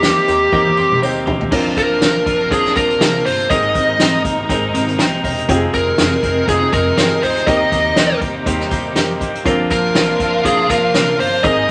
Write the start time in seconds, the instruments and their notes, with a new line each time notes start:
Already playing: upright bass D#2, string section C3 G3 A#3 D#4, upright piano D#3 C4 D#4 G4 A#4, lead electric guitar G4
0.02 clean electric guitar D#3 A#3 C4 G4, upright piano C4 D#4 G4 A#4, snare, closed hi-hat, tambourine
0.27 upright bass D#2, clean electric guitar A#3 C4 G4, upright piano C4 D#4 G4 C5, closed hi-hat, tambourine
0.52 upright bass D#2, clean electric guitar D#3 A#3 C4 G4, upright piano C4 D#4 G4 A#4, kick, high tom, tambourine
0.67 high tom
0.77 upright bass F2, clean electric guitar A#3 C4 G4, upright piano C6, tambourine
0.92 mid tom
1.01 upright bass D#2, clean electric guitar D#3 A#3 C4 G4, upright piano C4 D#4 G4 C5, tambourine
1.26 upright bass A1, clean electric guitar A#3 C4 G4, floor tom, tambourine
1.41 floor tom
1.51 upright bass A#1, clean electric guitar A#2 D3 F3 A#3 C4 F4, upright piano A#2 C4 D4 F4 A#4, string section C3 F3 A#3 D4, kick, crash, tambourine
1.76 upright bass A#1, clean electric guitar F3 A#3 C4 F4, lead electric guitar A#4, kick, closed hi-hat, tambourine
2.01 upright bass A#1, clean electric guitar A#2 D3 F3 A#3 C4 F4, upright piano C4 D4 F4 A#4, snare, closed hi-hat, tambourine
2.26 upright bass A#1, clean electric guitar F3 A#3 C4 F4, kick, closed hi-hat, tambourine
2.50 upright bass A#1, clean electric guitar F3 A#3 C4 F4, upright piano C4 D4 F4 A#4, lead electric guitar G#4, kick, closed hi-hat
2.65 snare
2.75 upright bass A#1, clean electric guitar F3 A#3 C4 F4, lead electric guitar A#4, kick, closed hi-hat, tambourine
2.90 closed hi-hat
3.00 upright bass C2, clean electric guitar A#2 D3 F3 A#3 C4 F4, upright piano C4 D4 F4 G#4, snare, closed hi-hat, tambourine
3.25 upright bass G1, clean electric guitar F3 A#3 C4 F4, lead electric guitar C5, open hi-hat, tambourine
3.40 closed hi-hat
3.49 upright bass G#1, upright piano G#2 C4 D#4 G#4 A#4, clean electric guitar G#3 C4 D#4 A#4, string section G#3 D#4, lead electric guitar D#5, kick, closed hi-hat, tambourine
3.74 upright bass G#1, clean electric guitar C4 D#4 A#4, kick, closed hi-hat, tambourine
3.99 upright bass G#1, clean electric guitar G#3 C4 D#4 A#4, upright piano C4 D#4 G#4 C5, snare, closed hi-hat, tambourine
4.24 upright bass G#1, clean electric guitar C4 D#4 A#4, kick, closed hi-hat, tambourine
4.49 upright bass G#1, clean electric guitar G#3 C4 D#4 A#4, upright piano C4 D#4 G#4 A#4, kick, closed hi-hat, tambourine
4.73 upright bass G#1, clean electric guitar C4 D#4 A#4, closed hi-hat, tambourine
4.88 closed hi-hat
4.98 upright bass A#1, clean electric guitar G#3 C4 D#4 A#4, upright piano G5 A#5, snare, closed hi-hat, tambourine
5.23 upright bass E1, clean electric guitar C4 D#4 A#4, upright piano C5 D#5, kick, open hi-hat
5.38 closed hi-hat
5.48 upright bass F1, clean electric guitar F2 C3 D#3 G#3 C4 G#4, string section F3 G#3 D#4, upright piano C4 D#4 F4 G4, kick, closed hi-hat, tambourine
5.55 upright piano G#4
5.73 upright bass F1, clean electric guitar D#3 G#3 C4 G#4, lead electric guitar A#4, kick, closed hi-hat, tambourine
5.98 upright bass F1, clean electric guitar F2 C3 D#3 G#3 C4 G#4, upright piano C4 D#4 F4 G#4, snare, closed hi-hat, tambourine
6.23 upright bass F1, clean electric guitar D#3 G#3 C4 G#4, kick, closed hi-hat, tambourine
6.47 upright bass F1, clean electric guitar D#3 G#3 C4 G#4, upright piano C4 D#4 F4 G#4, lead electric guitar G#4, kick, closed hi-hat, tambourine
6.72 upright bass F1, clean electric guitar D#3 G#3 C4 G#4, lead electric guitar A#4, kick, closed hi-hat, tambourine
6.97 upright bass G1, clean electric guitar F2 C3 D#3 G#3 C4 G#4, upright piano C4 D#4 F4 G4, snare, closed hi-hat, tambourine
7.04 upright piano G#4
7.22 upright bass D2, clean electric guitar D#3 G#3 C4 G#4, lead electric guitar C5, open hi-hat
7.37 closed hi-hat
7.47 upright bass D#2, clean electric guitar D#3 G3 A#3 C4 G4, upright piano D#3 C4 D#4 G4 A#4, string section G3 A#3, lead electric guitar D#5, kick, closed hi-hat, tambourine
7.71 upright bass D#2, clean electric guitar A#3 C4 G4, kick, closed hi-hat, tambourine
7.96 upright bass D#2, clean electric guitar D#3 G3 A#3 C4 G4, upright piano C4 D#4 G4 A#4, snare, closed hi-hat, tambourine
8.21 upright bass D#2, clean electric guitar A#3 C4 G4, kick, closed hi-hat, tambourine
8.46 upright bass D#2, clean electric guitar G3 A#3 C4 G4, upright piano C4 D#4 G4 C5, kick, closed hi-hat, tambourine
8.60 snare
8.71 upright bass D#2, clean electric guitar A#3 C4 G4, kick, closed hi-hat, tambourine
8.95 upright bass F2, clean electric guitar D#3 G3 A#3 C4 G4, upright piano C4 D#4 G4 A#4, snare, closed hi-hat, tambourine
9.20 upright bass A1, clean electric guitar A#3 C4 G4, kick, closed hi-hat
9.35 closed hi-hat
9.45 upright bass A#1, clean electric guitar A#2 D3 F3 A#3 C4 F4, upright piano A#2 C4 D4 F4 A#4, string section F3 D4, violin section F4 F5, kick, closed hi-hat, tambourine
9.70 upright bass A#1, clean electric guitar F3 A#3 C4 F4, lead electric guitar A#4, kick, closed hi-hat, tambourine
9.95 upright bass A#1, clean electric guitar A#2 D3 F3 A#3 C4 F4, upright piano C4 D4 F4 A#4, snare, closed hi-hat, tambourine
10.19 upright bass A#1, clean electric guitar F3 A#3 C4 F4, kick, closed hi-hat, tambourine
10.44 upright bass A#1, clean electric guitar F3 A#3 C4 F4, upright piano C4 D4 F4 A#4, lead electric guitar G#4, kick, closed hi-hat
10.68 upright bass A#1, clean electric guitar F3 A#3 C4 F4, lead electric guitar A#4, kick, closed hi-hat, tambourine
10.94 upright bass C2, clean electric guitar A#2 D3 F3 A#3 C4 F4, upright piano C4 C#4 F4 A#4, snare, closed hi-hat, tambourine
11.00 upright piano D4
11.18 upright bass G1, clean electric guitar F3 A#3 C4 F4, lead electric guitar C5, open hi-hat
11.43 upright bass G#1, upright piano G#2 C4 D#4 G#4 A#4, string section C3 G#3 D#4, clean electric guitar G#3 C4 D#4 A#4, violin section G#4 G#5, lead electric guitar D#5, kick, closed hi-hat, tambourine
11.67 clean electric guitar A#4